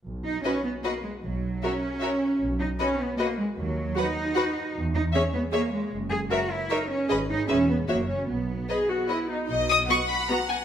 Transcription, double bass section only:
\new Staff \with { instrumentName = "Double bass section" } { \clef bass \time 3/4 \key b \major \tempo 4 = 153 b,,4 r2 | b,,4 r2 | b,,4 r2 | dis,4 r2 |
e,4 r2 | fis,,4 r2 | gis,,4 e,,4 fis,,4 | b,,4 r2 |
b,,4 r2 | }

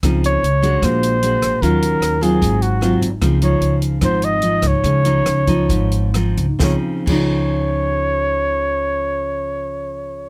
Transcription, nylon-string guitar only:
\new Staff \with { instrumentName = "Nylon-string guitar" } { \time 4/4 \key des \major \tempo 4 = 143 << { <f c' ees'>4 r8 <aes d' ges'>4. <aes d' ges'>4 | <ges des' f'>4. <ges c' f'>4. <ges c' f'>8 r8 | <f c' ees'>8 <f ees'>4. <f c' ees'>4 <f ees'>4~ | <f ees'>8 <f ees'>4 <f ees'>4. <f c' ees'>8 r8 |
<des f c' ees'>8 r8 <des f ees'>2.~ | <des f ees'>1 | } \\ { des2 bes,2 | ees2 aes,2 | des2 aes,2 | des2 aes,2 |
r1 | r1 | } >> }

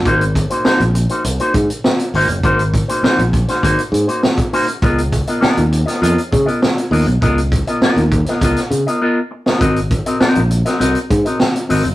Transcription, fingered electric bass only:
\new Staff \with { instrumentName = "Fingered electric bass" } { \clef bass \time 4/4 \key aes \mixolydian \tempo 4 = 100 aes,,8. r8 bes,,8 r16 c,16 r16 aes,16 r8. aes,,16 ges,,16 | aes,,8. r8 bes,,8 r16 aes,,16 r16 aes,16 r4 r16 | des,8. r8 ees,8 r16 f,16 r16 des16 r8. ees,16 ces,16 | des,8. r8 ees,8 r16 des,16 r16 des16 r4 r16 |
aes,,8. r8 bes,,8 r16 c,16 r16 aes,16 r8. aes,,16 ges,,16 | }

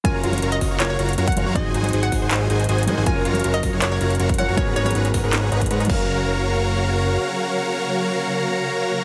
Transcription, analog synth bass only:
\new Staff \with { instrumentName = "Analog synth bass" } { \clef bass \time 4/4 \key fis \major \tempo 4 = 159 fis,,8 fis,,8 fis,,8 fis,,16 fis,,16 fis,,8 fis,,8 fis,8 fis,,16 fis,16 | gis,,8 gis,,8 gis,,8 gis,,16 gis,,16 gis,,8 gis,,8 gis,,8 gis,16 gis,,16 | fis,,8 fis,,8 fis,,8 fis,,16 fis,,16 fis,,8 fis,,8 fis,,8 fis,16 fis,,16 | gis,,8 gis,,8 gis,,8 gis,,16 gis,,16 gis,,8 gis,,8 gis,8 fis,,8~ |
fis,,2. r4 | r1 | }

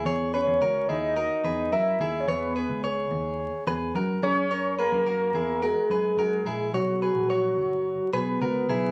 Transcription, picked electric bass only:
\new Staff \with { instrumentName = "Picked electric bass" } { \clef bass \time 4/4 \key e \lydian \tempo 4 = 108 e,8. e,16 cis,8 dis,8. r16 e,8 fis,8 dis,8 | e,8. cis,8. dis,8. r16 e,8 fis,8 fis,8~ | fis,8. fis,16 fis,8 e,8. r16 fis,8 fis,8 ais,,8 | b,,8. ais,,8. fis,,8. r16 b,,8 cis,8 b,,8 | }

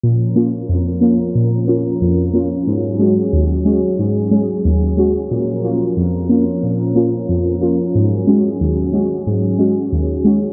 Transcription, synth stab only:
\new Staff \with { instrumentName = "Synth stab" } { \time 4/4 \key bes \minor \tempo 4 = 91 << { r8 <bes des' f'>8 r8 <bes des' f'>8 r8 <bes des' f'>8 r8 <bes des' f'>8 | r8 <aes des' ges'>8 r8 <aes des' ges'>8 r8 <aes des' aes'>8 r8 <aes des' ges'>8 | r8 <bes des' f'>8 r8 <bes des' f'>8 r8 <bes des' f'>8 r8 <bes des' f'>8 | r8 <aes des' ges'>8 r8 <aes des' ges'>8 r8 <aes des' ges'>8 r8 <aes des' ges'>8 | } \\ { bes,4 f,4 bes,4 f,4 | aes,4 ees,4 aes,4 ees,4 | bes,4 f,4 bes,4 f,4 | aes,4 ees,4 aes,4 ees,4 | } >> }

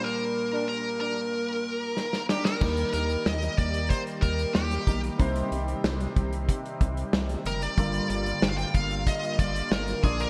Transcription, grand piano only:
<<
  \new Staff \with { instrumentName = "Grand piano" } { \time 4/4 \key g \phrygian \tempo 4 = 93 <g bes d' bes'>2.~ <g bes d' bes'>8 r8 | <g bes ees' bes'>2.~ <g bes ees' bes'>8 <g bes ees' bes'>8 | <g c' ees' c''>1 | <d g f' bes'>2.~ <d g f' bes'>8 <bes d' f' d''>8 | }
  \new Staff \with { instrumentName = "Grand piano" } { \clef bass \time 4/4 \key g \phrygian bes,4 r2. | ees4. r2 r8 | c4. r2 r8 | g,4. r2 bes,8 | }
>>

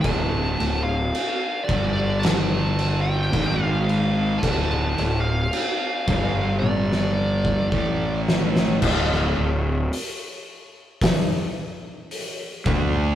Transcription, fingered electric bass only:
\new Staff \with { instrumentName = "Fingered electric bass" } { \clef bass \time 4/4 \key d \minor \tempo 4 = 55 d,,8 d,,8 r8 g,,4. gis,,4 | d,,8 d,,8 r8 g,,4. a,,4 | \key c \dorian d,,8 d,,8 r2 r8 d,8 | }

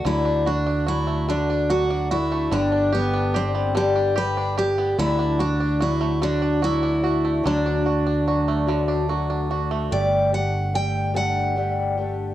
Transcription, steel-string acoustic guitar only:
\new Staff \with { instrumentName = "Steel-string acoustic guitar" } { \time 6/8 \key d \major \tempo 4. = 49 e'8 d'8 e'8 d'8 fis'8 e'8 | d'8 b8 c'8 g'8 b'8 g'8 | e'8 d'8 e'8 d'8 e'4 | d'2~ d'8 r8 |
d''8 fis''8 g''8 fis''4. | }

